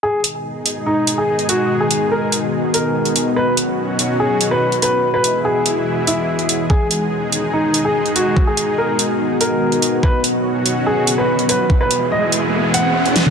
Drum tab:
HH |--x---x---x--xx-|--x---x---x--xx-|--x---x---x--xx-|--x---x---x--xx-|
SD |----------------|----------------|----------------|----------------|
T2 |----------------|----------------|----------------|----------------|
BD |----------------|----------------|----------------|----------------|

HH |--x---x---x--xx-|--x---x---x--xx-|--x---x---x--xx-|--x---x---x--xx-|
SD |----------------|----------------|----------------|--------------o-|
T2 |----------------|----------------|----------------|---------------o|
BD |o---------------|o---------------|o---------------|o---------------|